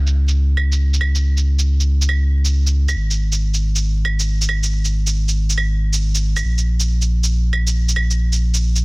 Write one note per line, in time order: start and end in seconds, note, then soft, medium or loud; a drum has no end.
0.00 2.95 C#2 medium
0.07 shaker soft
0.28 shaker soft
0.57 claves soft
0.72 shaker medium
0.94 shaker soft
1.01 claves medium
1.15 shaker soft
1.37 shaker soft
1.59 shaker medium
1.80 shaker soft
2.02 shaker soft
2.09 claves soft
2.45 shaker soft
2.67 shaker soft
2.89 claves medium
2.89 shaker soft
2.96 6.42 G#1 medium
3.10 shaker soft
3.32 shaker medium
3.54 shaker soft
3.76 shaker soft
4.05 claves soft
4.20 shaker medium
4.42 shaker soft
4.49 claves medium
4.63 shaker soft
4.85 shaker soft
5.07 shaker soft
5.28 shaker soft
5.50 shaker soft
5.58 claves soft
5.93 shaker soft
6.15 shaker soft
6.36 claves medium
6.36 shaker soft
6.44 8.85 A#1 medium
6.58 shaker soft
6.80 shaker soft
7.02 shaker soft
7.24 shaker soft
7.53 claves soft
7.67 shaker soft
7.89 shaker soft
7.96 claves medium
8.11 shaker soft
8.32 shaker soft
8.54 shaker medium
8.76 shaker soft